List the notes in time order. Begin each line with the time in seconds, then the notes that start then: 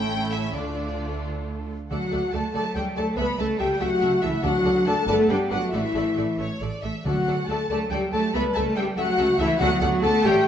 Already playing: A1 A2 A3 C#4 E4 A4 G5
0.32 E5
0.55 D2 D3 A3 D4 F4 A4 D5
1.90 D2 D3 F#3 A3 F#4 A4 D5 F#5
2.12 D2 A3 A4 D5
2.33 D2 A3 A4 D5 A5
2.54 D2 F#3 A3 A4 D5 A5
2.75 D2 G3 A3 G4 A4 D5 G5
2.96 D2 A3 A4 D5 A5
3.17 C#2 G3 A3 B3 A4 B4 E5 B5
3.38 C#2 A3 A4 E5 A5
3.59 C#2 G3 A3 G4 A4 E5 G5
3.80 C#2 F#3 A3 F#4 A4 E5 F#5
4.01 C#2 A3 A4 E5
4.22 C#2 E3 A3 E4 A4 E5
4.43 D2 D3 F#3 D4 F#4 A4 D5 F#5
4.65 D2 D4 A4 D5
4.86 D2 A3 D4 A4 D5 A5
5.07 G1 A3 B3 D4 A4 B4 D5 A5
5.29 G1 G3 D4 G4 B4 D5 G5
5.51 G1 F#3 D4 F#4 B4 D5 F#5
5.73 A1 E3 A3 E4 A4 D5 E5
5.95 A1 A3 A4 D5
6.16 A1 A3 A4 D5
6.38 A1 A3 A4 C#5
6.61 A1 A3 A4 D5
6.83 A1 A3 A4 E5
7.05 D2 D3 F#3 A3 F#4 A4 D5 F#5
7.27 D2 A3 A4 D5
7.48 D2 A3 A4 D5 A5
7.70 D2 F#3 A3 A4 D5 A5
7.91 D2 G3 A3 G4 A4 D5 G5
8.12 D2 A3 A4 D5 A5
8.34 C#2 G3 A3 B3 A4 B4 E5 B5
8.55 C#2 A3 A4 E5 A5
8.76 C#2 G3 A3 G4 A4 E5 G5
8.97 C#2 F#3 A3 F#4 A4 E5 F#5
9.18 C#2 A3 A4 E5
9.39 C#2 E3 A3 E4 A4 E5
9.59 D2 D3 F#3 A3 B3 F#4 A4 D5 F#5
9.81 D2 F#3 A3 F#4 A4 D5 F#5
10.02 D2 A3 A4 D5 A5
10.24 A1 G3 A3 G4 A4 C#5 G5